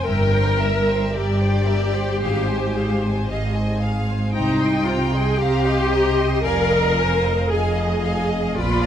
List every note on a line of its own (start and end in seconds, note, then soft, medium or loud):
0.04 1.01 G1 medium
0.04 1.02 G2 medium
0.04 0.31 A#4 medium
0.04 1.11 A#4 loud
0.04 0.31 E5 medium
0.04 0.60 G5 medium
0.32 0.60 C5 soft
0.32 0.60 G5 soft
0.60 0.87 A#4 medium
0.60 1.14 E5 medium
0.60 0.87 E5 soft
0.88 1.14 C5 soft
0.88 1.14 G5 soft
1.13 2.08 G1 medium
1.13 2.08 G2 medium
1.13 3.81 G4 medium
1.13 1.38 A#4 soft
1.13 2.20 D5 medium
1.13 1.38 E5 soft
1.39 1.66 C5 soft
1.39 1.66 G5 soft
1.66 1.93 A#4 medium
1.66 1.93 E5 medium
1.93 2.20 C5 soft
1.93 2.20 G5 soft
2.20 3.15 G#1 medium
2.20 3.16 G#2 medium
2.20 2.46 G#4 medium
2.20 3.26 C5 medium
2.20 2.46 F5 medium
2.48 2.75 C5 soft
2.48 2.75 G#5 soft
2.76 3.02 G#4 medium
2.76 3.02 F5 soft
3.03 3.29 C5 soft
3.03 3.29 G#5 soft
3.28 4.21 G#1 medium
3.28 4.21 G#2 medium
3.28 3.54 G#4 soft
3.28 3.81 D#5 medium
3.28 3.54 F5 soft
3.56 3.82 C5 soft
3.56 3.81 G#5 soft
3.80 4.08 G#4 soft
3.80 4.33 F5 medium
3.80 4.08 F5 medium
4.09 4.33 C5 soft
4.09 4.34 G#5 soft
4.32 5.26 C2 medium
4.32 5.26 C3 medium
4.32 4.82 D#4 medium
4.32 4.58 C5 medium
4.32 5.37 G5 medium
4.32 4.58 A#5 medium
4.60 4.86 D#5 soft
4.60 4.86 C6 soft
4.85 5.12 F4 medium
4.85 5.13 C5 medium
4.85 5.13 A#5 medium
5.12 5.39 G#4 medium
5.12 5.40 D#5 soft
5.12 5.40 C6 soft
5.39 6.31 C2 medium
5.39 6.31 C3 medium
5.39 6.44 G4 loud
5.39 5.64 C5 medium
5.39 5.91 F5 medium
5.39 5.64 A#5 medium
5.65 5.91 D#5 medium
5.65 5.91 C6 soft
5.91 6.18 C5 medium
5.91 6.42 D#5 medium
5.91 6.18 A#5 soft
6.18 6.44 D#5 soft
6.18 6.44 C6 medium
6.42 7.38 F1 medium
6.42 7.38 F2 medium
6.42 7.48 A#4 loud
6.42 6.97 D5 medium
6.42 6.68 F5 medium
6.42 6.68 G#5 medium
6.71 6.97 D#5 medium
6.71 6.97 F5 soft
6.96 7.50 C5 medium
6.96 7.24 F5 medium
6.96 7.24 G#5 medium
7.25 7.51 D#5 soft
7.25 7.51 F5 soft
7.50 8.43 F1 medium
7.50 8.44 F2 medium
7.50 8.56 G#4 medium
7.50 8.54 D#5 medium
7.50 7.76 F5 soft
7.50 7.76 G#5 medium
7.78 8.04 D#5 soft
7.78 8.03 F5 soft
8.04 8.28 F5 soft
8.04 8.30 G#5 medium
8.29 8.56 D#5 soft
8.29 8.56 F5 soft
8.56 8.86 A#1 medium
8.56 8.86 A#2 medium
8.56 8.86 F4 loud
8.56 8.81 B4 medium
8.56 8.86 D5 medium
8.56 8.81 B5 medium
8.83 8.86 D5 medium
8.83 8.86 A#5 soft